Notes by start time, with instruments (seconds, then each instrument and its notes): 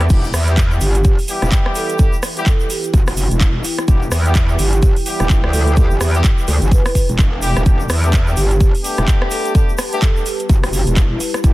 Already playing: noise sweep
0.01 cross-stick, closed hi-hat
0.10 wobble bass E1, horn section G3 B3 E4 G4, ambient pad E4 B4 G5, kick, closed hi-hat, crash, shaker
0.24 shaker
0.34 wobble bass E2, cross-stick, open hi-hat, shaker
0.48 horn section G3 B3 E4 G4, closed hi-hat, shaker
0.57 kick, clap, closed hi-hat, shaker
0.71 horn section G3 B3 E4 G4, shaker
0.81 wobble bass G1, vibraphone G4, open hi-hat, shaker
0.94 vibraphone G4, closed hi-hat, shaker
1.04 kick, closed hi-hat, shaker
1.19 open hi-hat, shaker
1.28 horn section G3 B3 E4 G4, open hi-hat, shaker
1.42 wobble bass E1, cross-stick, closed hi-hat, shaker
1.52 kick, clap, closed hi-hat, shaker
1.66 cross-stick
1.75 vibraphone A4, open hi-hat, shaker
1.89 vibraphone A4, closed hi-hat, shaker
1.99 horn section G3 B3 E4 G4, kick, closed hi-hat, shaker
2.13 shaker
2.23 cross-stick, open hi-hat, shaker
2.37 horn section G3 B3 E4 G4, closed hi-hat, shaker
2.46 vibraphone A4, kick, clap, closed hi-hat, shaker
2.60 horn section G3 B3 E4 G4, vibraphone A4, shaker
2.70 vibraphone G4, open hi-hat, shaker
2.84 closed hi-hat, shaker
2.94 wobble bass F#1, kick, closed hi-hat, shaker
3.07 cross-stick, open hi-hat, shaker
3.17 open hi-hat, shaker
3.31 wobble bass E1, closed hi-hat, shaker
3.41 kick, clap, closed hi-hat, shaker
3.55 vibraphone E4
3.64 open hi-hat, shaker
3.78 cross-stick, closed hi-hat, shaker
3.88 wobble bass E1, horn section G3 B3 E4 G4, kick, closed hi-hat, shaker
4.02 shaker
4.11 wobble bass E2, cross-stick, open hi-hat, shaker
4.25 horn section G3 B3 E4 G4, closed hi-hat, shaker
4.35 kick, clap, closed hi-hat, shaker
4.49 horn section G3 B3 E4 G4, shaker
4.59 wobble bass G1, vibraphone G4, open hi-hat, shaker
4.73 vibraphone G4, closed hi-hat, shaker
4.82 kick, closed hi-hat, shaker
4.96 open hi-hat, shaker
5.06 horn section G3 B3 E4 G4, open hi-hat, shaker
5.20 wobble bass E1, cross-stick, closed hi-hat, shaker
5.30 wobble bass E1, kick, clap, closed hi-hat, shaker
5.44 wobble bass D2, cross-stick
5.53 vibraphone A4, open hi-hat, shaker
5.67 vibraphone A4, closed hi-hat, shaker
5.76 horn section G3 B3 E4 G4, vibraphone G4, kick, closed hi-hat, shaker
5.91 wobble bass G1, vibraphone G4, shaker
6.01 wobble bass E2, cross-stick, open hi-hat, shaker
6.14 horn section G3 B3 E4 G4, closed hi-hat, shaker
6.24 kick, clap, closed hi-hat, shaker
6.38 horn section G3 B3 E4 G4, shaker
6.48 wobble bass D2, open hi-hat, shaker
6.62 wobble bass G1, closed hi-hat, shaker
6.71 vibraphone B4, kick, closed hi-hat, shaker
6.85 vibraphone B4, cross-stick, open hi-hat, shaker
6.95 kick, open hi-hat, shaker
7.09 wobble bass E1, closed hi-hat, shaker
7.19 kick, clap, closed hi-hat, shaker
7.42 horn section G3 B3 E4 G4, open hi-hat, shaker
7.56 wobble bass E1, cross-stick, closed hi-hat, shaker
7.66 wobble bass E1, horn section A3 B3 D4 G4, ambient pad G4 B4 A5, kick, closed hi-hat, shaker
7.80 shaker
7.89 wobble bass E2, cross-stick, open hi-hat, shaker
8.04 horn section A3 B3 D4 G4, closed hi-hat, shaker
8.12 kick, clap, closed hi-hat, shaker
8.27 horn section A3 B3 D4 G4, shaker
8.37 wobble bass G1, vibraphone G4, open hi-hat, shaker
8.51 vibraphone G4, closed hi-hat, shaker
8.60 kick, closed hi-hat, shaker
8.75 open hi-hat, shaker
8.84 horn section A3 B3 D4 G4, open hi-hat, shaker
8.97 wobble bass E1, cross-stick, closed hi-hat, shaker
9.08 kick, clap, closed hi-hat, shaker
9.22 cross-stick
9.31 vibraphone A4, open hi-hat, shaker
9.45 vibraphone A4, closed hi-hat, shaker
9.55 horn section A3 B3 D4 G4, kick, closed hi-hat, shaker
9.69 shaker
9.78 cross-stick, open hi-hat, shaker
9.92 horn section A3 B3 D4 G4, closed hi-hat, shaker
10.02 vibraphone A4, kick, clap, closed hi-hat, shaker
10.16 horn section A3 B3 D4 G4, vibraphone A4, shaker
10.25 vibraphone G4, open hi-hat, shaker
10.39 closed hi-hat, shaker
10.49 wobble bass F#1, kick, closed hi-hat, shaker
10.63 cross-stick, open hi-hat, shaker
10.73 open hi-hat, shaker
10.87 wobble bass E1, closed hi-hat, shaker
10.97 kick, clap, closed hi-hat, shaker
11.11 vibraphone E4
11.20 open hi-hat, shaker
11.34 cross-stick, closed hi-hat, shaker
11.44 wobble bass E1, horn section A3 B3 D4 G4, kick, closed hi-hat, shaker